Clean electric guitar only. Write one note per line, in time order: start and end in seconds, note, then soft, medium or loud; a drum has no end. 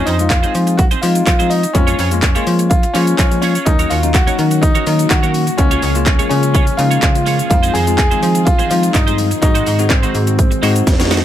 0.06 0.24 C4 medium
0.06 0.19 D#4 medium
0.06 0.18 G#4 medium
0.06 0.18 C5 medium
0.19 muted clean electric guitar stroke medium
0.31 muted clean electric guitar stroke soft
0.43 0.53 C4 medium
0.43 0.53 D#4 medium
0.43 0.54 G#4 medium
0.43 0.54 C5 medium
0.67 muted clean electric guitar stroke medium
0.78 muted clean electric guitar stroke soft
0.91 1.01 C4 medium
0.91 1.02 D#4 medium
0.91 1.02 G#4 medium
0.91 1.03 C5 medium
1.15 muted clean electric guitar stroke soft
1.26 muted clean electric guitar stroke medium
1.39 1.49 C4 medium
1.39 1.50 D#4 medium
1.39 1.50 G#4 medium
1.39 1.51 C5 medium
1.51 muted clean electric guitar stroke soft
1.63 muted clean electric guitar stroke medium
1.74 muted clean electric guitar stroke soft
1.87 1.97 C#4 medium
1.87 1.98 F4 medium
1.87 1.98 G#4 medium
1.87 1.99 C#5 medium
1.98 2.16 C#4 medium
1.98 2.11 F4 medium
1.98 2.11 G#4 medium
1.98 2.10 C#5 medium
2.11 muted clean electric guitar stroke soft
2.22 muted clean electric guitar stroke soft
2.35 2.45 C#4 medium
2.35 2.46 F4 medium
2.35 2.46 G#4 medium
2.35 2.47 C#5 medium
2.59 muted clean electric guitar stroke soft
2.83 muted clean electric guitar stroke soft
2.94 3.14 C#4 medium
2.94 3.07 F4 loud
2.94 3.07 G#4 loud
2.94 3.06 C#5 loud
3.07 muted clean electric guitar stroke medium
3.31 muted clean electric guitar stroke soft
3.42 3.56 C#4 medium
3.42 3.55 F4 medium
3.42 3.55 G#4 loud
3.42 3.54 C#5 loud
3.55 3.65 C#4 medium
3.55 3.67 F4 medium
3.55 3.67 G#4 medium
3.55 3.67 C#5 medium
3.67 muted clean electric guitar stroke soft
3.79 3.89 C#4 medium
3.79 3.90 F#4 medium
3.79 3.90 A#4 medium
3.79 3.91 C#5 medium
3.90 4.08 C#4 medium
3.90 4.03 F#4 medium
3.90 4.03 A#4 medium
3.90 4.02 C#5 medium
4.03 muted clean electric guitar stroke medium
4.14 muted clean electric guitar stroke soft
4.27 4.37 C#4 medium
4.27 4.38 F#4 medium
4.27 4.38 A#4 medium
4.27 4.38 C#5 loud
4.38 muted clean electric guitar stroke soft
4.51 muted clean electric guitar stroke medium
4.62 muted clean electric guitar stroke soft
4.75 4.85 C#4 medium
4.75 4.86 F#4 medium
4.75 4.86 A#4 medium
4.75 4.86 C#5 medium
4.86 muted clean electric guitar stroke medium
4.99 muted clean electric guitar stroke soft
5.10 muted clean electric guitar stroke soft
5.23 5.33 C#4 medium
5.23 5.34 F#4 medium
5.23 5.34 A#4 medium
5.23 5.34 C#5 medium
5.34 muted clean electric guitar stroke soft
5.47 muted clean electric guitar stroke soft
5.58 muted clean electric guitar stroke soft
5.71 5.81 C#4 medium
5.71 5.82 F4 medium
5.71 5.82 G#4 medium
5.71 5.83 C#5 medium
5.82 6.00 C#4 medium
5.82 5.95 F4 medium
5.82 5.95 G#4 medium
5.82 5.94 C#5 medium
5.95 muted clean electric guitar stroke soft
6.06 muted clean electric guitar stroke soft
6.19 6.29 C#4 medium
6.19 6.30 F4 medium
6.19 6.30 G#4 medium
6.19 6.30 C#5 medium
6.43 muted clean electric guitar stroke medium
6.54 6.74 C#4 medium
6.54 6.67 F4 medium
6.54 6.66 G#4 loud
6.54 6.65 C#5 medium
6.67 muted clean electric guitar stroke soft
6.78 muted clean electric guitar stroke soft
6.91 7.01 C#4 medium
6.91 7.01 F4 medium
6.91 7.02 G#4 medium
6.91 7.02 C#5 medium
7.15 muted clean electric guitar stroke soft
7.26 7.39 C#4 medium
7.26 7.39 F4 loud
7.26 7.38 G#4 medium
7.26 7.37 C#5 loud
7.39 7.50 C#4 medium
7.39 7.50 F4 medium
7.39 7.50 G#4 medium
7.39 7.51 C#5 medium
7.50 muted clean electric guitar stroke soft
7.63 7.73 C4 medium
7.63 7.74 D#4 medium
7.63 7.74 G#4 medium
7.63 7.75 C5 medium
7.74 7.92 C4 medium
7.74 7.87 D#4 medium
7.74 7.87 G#4 medium
7.74 7.86 C5 medium
7.87 muted clean electric guitar stroke medium
7.98 muted clean electric guitar stroke medium
8.11 8.21 C4 medium
8.11 8.22 D#4 medium
8.11 8.22 G#4 medium
8.11 8.22 C5 medium
8.35 muted clean electric guitar stroke medium
8.46 muted clean electric guitar stroke soft
8.59 8.69 C4 medium
8.59 8.70 D#4 medium
8.59 8.70 G#4 medium
8.59 8.70 C5 medium
8.70 muted clean electric guitar stroke medium
8.83 muted clean electric guitar stroke soft
8.94 muted clean electric guitar stroke soft
9.07 9.17 C4 medium
9.07 9.18 D#4 medium
9.07 9.18 G#4 medium
9.07 9.18 C5 medium
9.18 muted clean electric guitar stroke soft
9.31 muted clean electric guitar stroke soft
9.42 muted clean electric guitar stroke medium
9.55 9.65 G#3 medium
9.55 9.65 D#4 medium
9.55 9.66 F#4 medium
9.55 9.67 C5 medium
9.66 9.84 G#3 medium
9.66 9.79 D#4 medium
9.66 9.78 F#4 medium
9.66 9.78 C5 medium
9.79 muted clean electric guitar stroke soft
10.03 10.13 G#3 medium
10.03 10.14 D#4 medium
10.03 10.14 F#4 medium
10.03 10.14 C5 medium
10.14 muted clean electric guitar stroke soft
10.27 muted clean electric guitar stroke soft
10.51 muted clean electric guitar stroke medium
10.62 10.82 G#3 medium
10.62 10.75 D#4 medium
10.62 10.74 F#4 medium
10.62 10.74 C5 loud
10.75 muted clean electric guitar stroke soft
10.86 muted clean electric guitar stroke soft
10.99 muted clean electric guitar stroke soft
11.10 11.23 G#3 medium
11.10 11.23 D#4 loud
11.10 11.22 F#4 loud
11.10 11.22 C5 loud